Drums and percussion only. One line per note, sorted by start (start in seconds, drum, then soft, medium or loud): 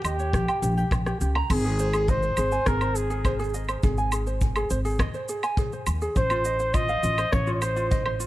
0.05 low woodblock medium
0.05 shaker medium
0.19 shaker soft
0.33 kick loud
0.33 cross-stick medium
0.33 shaker soft
0.48 low woodblock medium
0.48 shaker soft
0.63 shaker medium
0.78 shaker soft
0.91 kick loud
0.91 cross-stick medium
0.91 low woodblock medium
0.91 shaker soft
1.06 cross-stick medium
1.06 shaker soft
1.21 shaker medium
1.35 low woodblock medium
1.50 kick loud
1.50 crash loud
1.50 low woodblock medium
1.50 shaker soft
1.65 shaker soft
1.79 shaker medium
1.93 low woodblock medium
1.93 shaker soft
2.08 kick loud
2.08 shaker soft
2.23 shaker soft
2.37 low woodblock medium
2.37 shaker medium
2.52 shaker soft
2.66 kick loud
2.66 cross-stick medium
2.66 shaker soft
2.81 low woodblock medium
2.81 shaker soft
2.96 shaker medium
3.10 shaker soft
3.25 kick loud
3.25 low woodblock medium
3.25 shaker soft
3.39 shaker soft
3.44 shaker soft
3.49 shaker soft
3.54 shaker medium
3.59 shaker soft
3.64 shaker soft
3.69 low woodblock medium
3.69 shaker soft
3.83 kick loud
3.83 shaker soft
3.98 shaker soft
4.12 low woodblock medium
4.12 shaker medium
4.27 shaker soft
4.41 kick loud
4.41 shaker soft
4.56 low woodblock medium
4.56 shaker soft
4.70 shaker medium
4.85 shaker soft
4.88 shaker soft
4.90 shaker soft
4.92 shaker soft
4.95 shaker soft
4.97 kick loud
4.97 cross-stick medium
4.97 low woodblock medium
4.97 shaker soft
5.00 shaker soft
5.14 shaker soft
5.29 shaker medium
5.43 low woodblock medium
5.43 shaker soft
5.57 kick loud
5.57 shaker soft
5.72 shaker soft
5.87 low woodblock medium
5.87 shaker medium
6.02 shaker soft
6.16 kick loud
6.16 shaker soft
6.30 low woodblock medium
6.30 shaker soft
6.45 shaker medium
6.59 shaker soft
6.74 kick loud
6.74 low woodblock medium
6.74 shaker soft
6.89 shaker soft
7.03 shaker medium
7.18 low woodblock medium
7.18 shaker soft
7.33 kick loud
7.33 cross-stick medium
7.33 shaker soft
7.47 shaker soft
7.62 low woodblock medium
7.62 shaker medium
7.77 shaker soft
7.91 kick loud
7.91 shaker soft
8.06 low woodblock medium
8.20 shaker medium